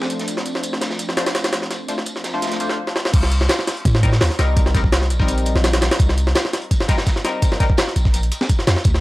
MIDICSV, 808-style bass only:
0, 0, Header, 1, 2, 480
1, 0, Start_track
1, 0, Tempo, 357143
1, 374, Time_signature, 4, 2, 24, 8
1, 12101, End_track
2, 0, Start_track
2, 0, Title_t, "808-style bass"
2, 0, Program_c, 0, 38
2, 4216, Note_on_c, 0, 36, 100
2, 4677, Note_off_c, 0, 36, 0
2, 5177, Note_on_c, 0, 45, 102
2, 5637, Note_off_c, 0, 45, 0
2, 5659, Note_on_c, 0, 39, 85
2, 5770, Note_off_c, 0, 39, 0
2, 5899, Note_on_c, 0, 36, 84
2, 6860, Note_on_c, 0, 34, 82
2, 6880, Note_off_c, 0, 36, 0
2, 7443, Note_off_c, 0, 34, 0
2, 7464, Note_on_c, 0, 34, 86
2, 7922, Note_off_c, 0, 34, 0
2, 8060, Note_on_c, 0, 36, 101
2, 8519, Note_off_c, 0, 36, 0
2, 10699, Note_on_c, 0, 34, 82
2, 11158, Note_off_c, 0, 34, 0
2, 11656, Note_on_c, 0, 41, 81
2, 11769, Note_off_c, 0, 41, 0
2, 11897, Note_on_c, 0, 38, 101
2, 12101, Note_off_c, 0, 38, 0
2, 12101, End_track
0, 0, End_of_file